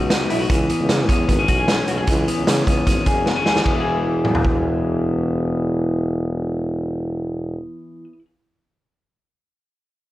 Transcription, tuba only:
0.00 0.24 C#2 medium
0.30 0.47 B1 medium
0.50 0.66 C#2 medium
0.79 0.88 C#2 medium
0.89 1.10 C#3 medium
1.09 1.26 E2 medium
1.29 1.45 G#1 medium
1.48 1.82 B1 medium
1.88 2.04 B1 medium
2.08 2.24 C#2 loud
2.37 2.46 C#2 medium
2.47 2.64 C#3 medium
2.67 2.84 C#2 medium
2.87 3.03 G#1 medium
3.06 3.47 F#1 medium
3.46 3.63 D#2 medium
3.66 7.58 E1 medium

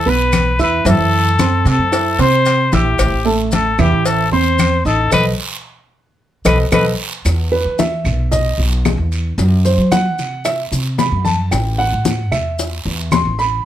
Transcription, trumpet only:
0.00 0.11 A4 loud
0.10 0.62 B4 loud
0.62 0.86 B4 loud
0.89 1.64 A4 loud
1.68 2.17 A4 loud
2.21 2.76 C5 loud
2.74 3.27 G4 medium
3.53 3.82 A4 medium
3.80 4.08 G4 medium
4.06 4.31 A4 medium
4.32 4.82 C5 loud
4.86 5.11 A4 loud
5.13 5.25 B4 loud
6.47 6.59 B4 medium
6.73 6.86 B4 medium

